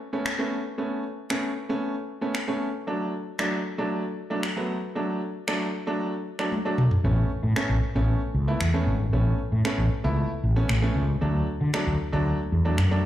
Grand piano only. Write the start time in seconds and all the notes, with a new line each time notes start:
0.13 A3 B3 C#4
0.39 A3 B3 C#4
0.78 A3 B3 C#4
1.30 A3 B3 C#4
1.69 A3 B3 C#4
2.21 A3 B3 C#4
2.48 A3 B3 C#4
2.87 F#3 A3 D4
3.39 F#3 A3 D4
3.78 F#3 A3 D4
4.30 F#3 A3 D4
4.56 F#3 A3 B3
4.95 F#3 A3 D4
5.47 F#3 A3 D4
5.87 F#3 A3 D4
6.39 F#3 A3 D4
6.65 F#3 A3 D4
7.04 A3 B3 C#4
7.56 A3 B3 C#4
7.95 A3 B3 C#4
8.47 A3 B3 E4
8.74 A3 B3 C#4
9.13 A3 B3 C#4
9.65 A3 B3 C#4
10.04 A3 B3 E4
10.56 A3 B3 C#4
10.82 A3 B3 C#4
11.21 F#3 A3 D4
11.73 F#3 A3 D4
12.12 F#3 A3 D4
12.65 F#3 A3 D4
12.91 F#3 A3 D4